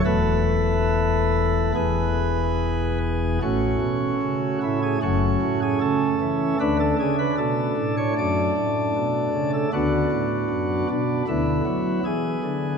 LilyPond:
<<
  \new Staff \with { instrumentName = "Pipe organ" } { \time 4/4 \key a \major \tempo 4 = 76 b'2.~ b'8 r8 | fis'4. e'16 gis'16 fis'8. gis'16 a'4 | b'16 a'16 gis'16 b'16 a'8. cis''16 d''4.~ d''16 a'16 | fis'4. d'8 e'4 gis'4 | }
  \new Staff \with { instrumentName = "Pipe organ" } { \clef bass \time 4/4 \key a \major << { <e, e a a'>2 <e, e b gis'>2 | <a cis'>2 <a cis'>2 | <a d'>1 | <b d'>2 b2 | } \\ { e,,2 e,,2 | <a,, a,>8 b,8 cis8 a,8 <fis,, fis,>8 a,8 cis8 e8 | <d, d>8 cis8 b,8 a,8 fis,8 a,8 b,8 cis8 | <d, d>8 a,8 fis,8 b,8 <d, d>8 fis8 e8 d8 | } >> }
>>